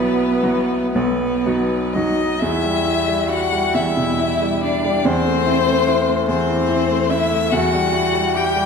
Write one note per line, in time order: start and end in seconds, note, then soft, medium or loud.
0.00 0.95 B1 medium
0.00 0.39 F#3 medium
0.00 0.92 B3 medium
0.00 0.39 E4 medium
0.00 0.39 F#4 medium
0.00 0.91 B4 medium
0.43 0.92 F#3 medium
0.43 0.92 E4 medium
0.43 0.92 F#4 medium
0.94 1.44 B1 medium
0.94 1.97 B3 medium
0.94 1.95 B4 medium
1.46 1.91 F#3 medium
1.46 1.91 D#4 medium
1.46 1.92 F#4 medium
1.93 2.38 F#3 soft
1.93 2.41 D#4 medium
1.93 2.38 D#4 soft
1.93 2.38 F#4 medium
1.93 2.41 D#5 medium
2.40 3.73 E2 medium
2.40 3.30 E4 medium
2.40 3.31 E5 loud
2.64 2.99 G3 soft
2.86 3.21 E4 medium
3.08 3.43 G3 soft
3.29 3.65 E4 medium
3.29 3.75 F#4 medium
3.29 3.77 F#5 loud
3.52 3.88 G3 medium
3.74 5.01 E2 medium
3.74 4.63 E4 medium
3.74 4.63 E5 medium
3.97 4.33 B2 medium
4.19 4.54 E4 medium
4.42 4.76 G3 soft
4.63 5.06 D4 medium
4.63 4.97 E4 medium
4.63 5.07 D5 medium
4.85 5.05 G3 medium
5.05 6.27 E2 medium
5.05 6.28 C4 medium
5.05 6.27 C5 loud
5.26 5.59 A3 medium
5.46 5.79 E4 medium
5.67 6.00 A3 medium
5.87 6.20 E4 medium
6.09 6.41 A3 medium
6.28 7.49 E2 medium
6.28 7.11 C4 medium
6.28 7.11 C5 loud
6.49 6.81 E3 medium
6.69 7.02 E4 medium
6.90 7.23 A3 medium
7.10 7.44 E4 medium
7.10 7.51 E4 medium
7.10 7.54 E5 loud
7.32 7.53 A3 medium
7.52 8.66 E2 medium
7.52 8.37 F#4 medium
7.52 8.38 F#5 loud
7.73 8.06 G3 medium
7.93 8.27 E4 medium
8.14 8.48 G3 soft
8.34 8.66 E4 medium
8.34 8.66 G4 medium
8.34 8.66 G5 loud
8.56 8.66 G3 soft